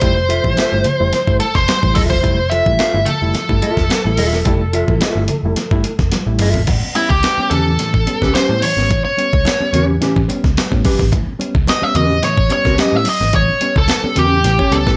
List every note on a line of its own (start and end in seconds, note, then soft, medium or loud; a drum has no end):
0.00 0.39 F1 loud
0.00 0.17 G3 loud
0.00 0.17 A3 medium
0.00 0.17 E4 loud
0.00 1.36 C5 loud
0.00 kick loud
0.00 closed hi-hat medium
0.00 muted conga medium
0.29 0.45 F3 medium
0.29 0.48 F4 medium
0.29 0.48 A4 medium
0.29 0.48 E5 medium
0.29 closed hi-hat medium
0.29 muted conga soft
0.44 0.56 A1 medium
0.44 0.58 G3 medium
0.44 0.58 A3 medium
0.44 0.58 E4 medium
0.44 kick loud
0.57 0.76 F4 medium
0.57 0.77 A4 medium
0.57 0.77 E5 loud
0.57 snare loud
0.57 closed hi-hat medium
0.57 high conga medium
0.72 0.84 G1 medium
0.72 0.85 G3 medium
0.72 0.86 A3 medium
0.72 0.86 E4 medium
0.84 1.00 F3 medium
0.84 closed hi-hat medium
0.84 low conga medium
1.00 1.12 F1 medium
1.00 1.13 G3 medium
1.00 1.13 A3 medium
1.00 1.13 E4 medium
1.13 1.28 F3 medium
1.13 muted picked electric bass stroke soft
1.13 snare soft
1.13 closed hi-hat loud
1.13 muted conga medium
1.27 1.39 G1 medium
1.27 1.41 G3 medium
1.27 1.39 A3 medium
1.27 1.39 E4 medium
1.27 kick medium
1.40 1.47 A3 soft
1.40 1.46 E4 soft
1.40 1.55 A4 medium
1.40 closed hi-hat medium
1.40 muted conga medium
1.55 1.67 F1 medium
1.55 1.95 C5 loud
1.55 kick medium
1.55 snare soft
1.68 snare loud
1.68 closed hi-hat medium
1.68 high conga medium
1.83 1.94 A1 loud
1.83 1.96 G3 medium
1.83 1.97 A3 medium
1.83 1.97 E4 medium
1.83 kick medium
1.95 2.11 D#1 medium
1.95 2.17 F4 medium
1.95 2.00 A4 medium
1.95 2.17 A4 medium
1.95 2.17 E5 medium
1.95 kick loud
1.95 open hi-hat medium
1.95 high conga medium
2.10 2.22 E1 medium
2.10 2.24 F3 medium
2.10 2.51 C5 loud
2.10 kick medium
2.10 snare soft
2.23 2.61 F1 medium
2.23 2.38 G3 medium
2.23 2.39 A3 medium
2.23 2.39 E4 loud
2.23 kick loud
2.23 closed hi-hat medium
2.23 muted conga medium
2.50 2.67 F3 medium
2.50 2.70 F4 medium
2.50 2.71 A4 medium
2.50 3.08 E5 loud
2.50 2.71 E5 loud
2.50 closed hi-hat medium
2.66 2.78 A1 medium
2.66 2.80 G3 medium
2.66 2.80 A3 medium
2.66 2.80 E4 medium
2.66 kick loud
2.79 2.98 F4 medium
2.79 2.98 A4 medium
2.79 2.98 F5 loud
2.79 snare loud
2.79 closed hi-hat medium
2.79 high conga medium
2.94 3.06 G1 medium
2.94 3.08 G3 medium
2.94 3.08 A3 medium
2.94 3.08 E4 medium
3.05 3.22 F3 medium
3.05 6.08 A4 medium
3.05 closed hi-hat medium
3.05 low conga medium
3.22 3.33 F1 medium
3.22 3.35 G3 medium
3.22 3.35 A3 medium
3.22 3.35 E4 medium
3.34 3.50 F3 medium
3.34 muted picked electric bass stroke medium
3.34 snare soft
3.34 closed hi-hat medium
3.34 muted conga medium
3.49 3.61 G1 medium
3.49 3.63 G3 medium
3.49 3.62 A3 medium
3.49 3.62 E4 medium
3.49 kick medium
3.62 3.69 A3 soft
3.62 3.69 E4 soft
3.62 3.83 F4 medium
3.62 3.83 A4 medium
3.62 3.83 E5 medium
3.62 closed hi-hat medium
3.62 muted conga medium
3.77 3.89 F1 medium
3.77 kick medium
3.77 snare soft
3.90 snare loud
3.90 closed hi-hat medium
3.90 high conga medium
4.05 4.17 A1 loud
4.05 4.19 G3 medium
4.05 4.19 A3 medium
4.05 4.19 E4 medium
4.17 4.33 D#1 medium
4.17 4.38 F4 medium
4.17 4.39 A4 medium
4.17 4.39 E5 loud
4.17 open hi-hat medium
4.17 high conga medium
4.33 4.44 E1 medium
4.33 4.47 F3 medium
4.33 snare soft
4.45 4.83 F1 loud
4.45 4.61 G3 medium
4.45 4.61 A3 medium
4.45 4.62 E4 loud
4.45 kick loud
4.45 closed hi-hat medium
4.45 muted conga medium
4.73 4.89 F3 medium
4.73 4.92 F4 medium
4.73 4.93 A4 medium
4.73 4.93 E5 medium
4.73 closed hi-hat medium
4.88 5.00 A1 medium
4.88 5.02 G3 medium
4.88 5.02 A3 medium
4.88 5.02 E4 medium
4.88 kick loud
5.01 5.22 F4 medium
5.01 5.22 A4 medium
5.01 5.23 E5 medium
5.01 snare loud
5.01 closed hi-hat medium
5.01 high conga medium
5.15 5.27 G1 medium
5.15 5.30 G3 medium
5.15 5.30 A3 medium
5.15 5.30 E4 medium
5.28 5.45 F3 medium
5.28 closed hi-hat medium
5.28 low conga medium
5.43 5.55 F1 medium
5.43 5.58 G3 medium
5.43 5.58 A3 medium
5.43 5.58 E4 medium
5.56 5.72 F3 medium
5.56 muted picked electric bass stroke medium
5.56 snare soft
5.56 closed hi-hat medium
5.56 muted conga medium
5.71 5.83 G1 medium
5.71 5.85 G3 medium
5.71 5.84 A3 medium
5.71 5.84 E4 medium
5.71 kick medium
5.84 5.91 E4 soft
5.84 closed hi-hat medium
5.84 muted conga medium
5.99 6.11 F1 medium
5.99 kick loud
5.99 snare soft
6.12 6.28 F3 medium
6.12 snare medium
6.12 closed hi-hat medium
6.12 high conga medium
6.26 6.39 A1 medium
6.26 6.40 G3 medium
6.26 6.39 A3 medium
6.26 6.39 E4 medium
6.39 6.55 G1 medium
6.39 6.46 A3 soft
6.39 6.46 E4 soft
6.39 6.61 F4 medium
6.39 6.62 A4 medium
6.39 6.62 E5 medium
6.39 mid tom loud
6.39 open hi-hat medium
6.39 high conga medium
6.54 6.66 G#1 medium
6.54 floor tom medium
6.67 6.81 A1 loud
6.67 6.83 A2 medium
6.67 6.83 E3 medium
6.67 kick loud
6.67 closed hi-hat medium
6.67 crash medium
6.67 muted conga medium
6.83 6.89 B3 soft
6.83 6.88 C#4 soft
6.95 7.11 G3 medium
6.95 7.11 B3 medium
6.95 7.12 C#4 medium
6.95 7.09 E4 medium
6.95 closed hi-hat medium
7.09 7.22 C#2 medium
7.09 7.52 G4 medium
7.09 kick medium
7.23 snare loud
7.23 closed hi-hat medium
7.23 high conga medium
7.38 7.52 G3 medium
7.38 7.52 B3 medium
7.38 7.53 C#4 medium
7.38 muted picked electric bass stroke soft
7.50 7.75 E2 loud
7.50 7.70 C#4 medium
7.50 7.71 G4 medium
7.50 8.34 A4 medium
7.50 7.71 B4 medium
7.50 closed hi-hat medium
7.50 low conga medium
7.68 7.79 A2 medium
7.68 7.79 E3 medium
7.79 7.95 A2 medium
7.79 7.95 E3 medium
7.79 snare soft
7.79 closed hi-hat medium
7.79 muted conga medium
7.94 8.05 A1 medium
7.94 kick medium
8.07 8.22 G3 medium
8.07 8.21 B3 medium
8.07 8.21 C#4 medium
8.07 closed hi-hat medium
8.07 muted conga medium
8.22 8.33 C#2 medium
8.22 8.27 B3 soft
8.22 8.27 C#4 soft
8.22 8.34 C#4 medium
8.22 8.34 G4 medium
8.22 8.35 B4 loud
8.22 kick medium
8.22 snare soft
8.35 8.53 C#4 medium
8.35 8.54 G4 medium
8.35 8.54 B4 medium
8.35 8.63 C5 loud
8.35 snare loud
8.35 closed hi-hat medium
8.35 high conga medium
8.49 8.61 A2 loud
8.49 8.63 G3 medium
8.49 8.63 B3 medium
8.49 8.63 C#4 medium
8.62 8.78 A2 medium
8.62 8.78 E3 medium
8.62 9.02 C#5 loud
8.62 open hi-hat medium
8.62 high conga medium
8.77 8.89 G#1 medium
8.77 8.90 G3 medium
8.77 8.91 B3 medium
8.77 8.91 C#4 medium
8.77 snare soft
8.89 9.03 A1 loud
8.89 9.05 A2 medium
8.89 9.05 E3 medium
8.89 kick loud
8.89 closed hi-hat medium
8.89 muted conga medium
9.05 9.10 B3 soft
9.05 9.10 C#4 soft
9.05 9.84 C#5 medium
9.17 9.33 G3 medium
9.17 9.33 B3 medium
9.17 9.33 C#4 medium
9.17 closed hi-hat medium
9.17 muted conga soft
9.33 9.44 C#2 medium
9.33 kick loud
9.45 snare loud
9.45 closed hi-hat medium
9.45 high conga medium
9.60 9.74 G3 medium
9.60 9.74 B3 medium
9.60 9.74 C#4 medium
9.60 muted picked electric bass stroke soft
9.73 9.97 E2 loud
9.73 9.94 C#4 medium
9.73 9.95 G4 medium
9.73 9.95 B4 medium
9.73 closed hi-hat medium
9.73 low conga medium
9.87 9.99 A2 medium
9.87 9.99 E3 medium
10.01 10.16 A2 medium
10.01 10.16 E3 medium
10.01 10.20 C#4 medium
10.01 10.21 G4 medium
10.01 10.21 B4 medium
10.01 snare soft
10.01 closed hi-hat medium
10.01 muted conga medium
10.16 10.28 A1 medium
10.16 kick medium
10.28 10.44 G3 medium
10.28 10.42 B3 medium
10.28 10.42 C#4 medium
10.28 closed hi-hat medium
10.28 muted conga medium
10.43 10.55 C#2 medium
10.43 10.49 B3 soft
10.43 10.49 C#4 soft
10.43 kick medium
10.43 snare soft
10.57 snare loud
10.57 closed hi-hat medium
10.57 high conga medium
10.70 10.83 A2 loud
10.70 10.84 G3 medium
10.70 10.85 B3 medium
10.70 10.85 C#4 medium
10.70 kick medium
10.84 11.03 C#4 medium
10.84 11.04 G4 medium
10.84 11.04 B4 medium
10.84 kick loud
10.84 open hi-hat medium
10.84 high conga medium
10.99 11.11 G#1 medium
10.99 11.11 A2 medium
10.99 11.11 E3 medium
10.99 kick medium
10.99 snare soft
11.12 11.25 A1 loud
11.12 11.27 A2 medium
11.12 11.27 E3 medium
11.12 kick loud
11.12 closed hi-hat medium
11.12 muted conga medium
11.27 11.32 B3 soft
11.27 11.32 C#4 soft
11.39 11.55 G3 medium
11.39 11.55 B3 medium
11.39 11.55 C#4 medium
11.39 closed hi-hat medium
11.39 muted conga soft
11.55 11.66 C#2 medium
11.55 kick loud
11.67 11.83 D#5 medium
11.67 snare loud
11.67 closed hi-hat medium
11.67 high conga medium
11.81 11.95 G3 medium
11.81 11.96 B3 medium
11.81 11.96 C#4 medium
11.81 11.96 E5 medium
11.81 muted picked electric bass stroke medium
11.95 12.19 E2 loud
11.95 12.16 C#4 medium
11.95 12.16 G4 medium
11.95 12.16 B4 loud
11.95 12.22 D#5 medium
11.95 closed hi-hat medium
11.95 low conga medium
12.10 12.22 A2 medium
12.10 12.22 E3 medium
12.23 12.38 A2 medium
12.23 12.38 E3 medium
12.23 12.50 C#5 loud
12.23 snare soft
12.23 closed hi-hat medium
12.23 muted conga medium
12.37 12.49 A1 medium
12.37 kick medium
12.50 12.66 G3 medium
12.50 12.65 B3 medium
12.50 12.64 C#4 loud
12.50 12.78 C#5 medium
12.50 closed hi-hat medium
12.50 muted conga medium
12.65 12.77 C#2 medium
12.65 12.71 C#4 soft
12.65 12.77 C#4 medium
12.65 12.77 G4 loud
12.65 12.78 B4 loud
12.65 kick medium
12.65 snare soft
12.77 12.97 C#4 medium
12.77 12.97 G4 loud
12.77 12.98 B4 medium
12.77 12.96 D#5 loud
12.77 snare loud
12.77 closed hi-hat medium
12.77 high conga medium
12.93 13.04 A2 loud
12.93 13.07 G3 medium
12.93 13.07 B3 medium
12.93 13.07 C#4 medium
12.93 13.08 E5 medium
13.05 open hi-hat loud
13.05 high conga medium
13.09 13.35 D#5 loud
13.21 13.32 G#1 medium
13.21 13.33 A2 medium
13.21 13.33 E3 medium
13.21 snare soft
13.33 13.47 A1 loud
13.33 13.49 A2 medium
13.33 13.49 E3 medium
13.33 13.74 C#5 loud
13.33 kick loud
13.33 closed hi-hat medium
13.33 muted conga medium
13.50 13.55 B3 soft
13.50 13.55 C#4 soft
13.61 13.77 G3 medium
13.61 13.77 B3 medium
13.61 13.77 C#4 medium
13.61 closed hi-hat medium
13.61 muted conga soft
13.76 13.88 C#2 medium
13.76 14.19 A4 medium
13.76 kick medium
13.88 snare loud
13.88 closed hi-hat medium
13.88 high conga medium
14.04 14.17 G3 medium
14.04 14.18 B3 medium
14.04 14.18 C#4 medium
14.04 muted picked electric bass stroke soft
14.16 14.41 E2 loud
14.16 14.37 C#4 medium
14.16 14.38 G4 medium
14.16 14.75 G4 medium
14.16 14.38 B4 medium
14.16 closed hi-hat medium
14.16 low conga medium
14.32 14.43 A2 medium
14.32 14.43 E3 medium
14.44 14.57 A1 medium
14.44 14.60 A2 medium
14.44 14.60 E3 medium
14.44 snare soft
14.44 closed hi-hat medium
14.44 muted conga medium
14.59 14.77 C#4 medium
14.59 14.77 G4 medium
14.59 14.77 C#5 medium
14.59 kick medium
14.72 14.85 C#2 medium
14.72 14.87 G3 medium
14.72 14.86 B3 medium
14.72 14.85 C#4 medium
14.72 14.97 A4 medium
14.72 closed hi-hat medium
14.72 muted conga medium
14.87 14.97 A2 medium
14.87 14.92 B3 soft
14.87 14.92 C#4 soft
14.87 14.97 C#4 medium
14.87 14.97 G4 medium
14.87 14.97 B4 medium
14.87 kick medium
14.87 snare soft